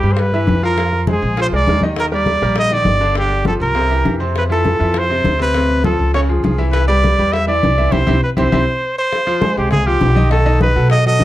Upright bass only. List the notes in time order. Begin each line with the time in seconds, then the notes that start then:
0.03 G2
0.48 F2
1.22 A#1
1.52 C2
1.67 D#2
2.41 A#1
2.85 G1
3.60 C2
4.05 F2
4.80 F2
5.25 D2
5.99 C#2
6.44 C2
7.19 E2
7.64 C2
7.93 C2
8.08 C2
8.38 C2
8.52 C2
9.57 C2
10.01 B1
10.76 B2
11.20 E2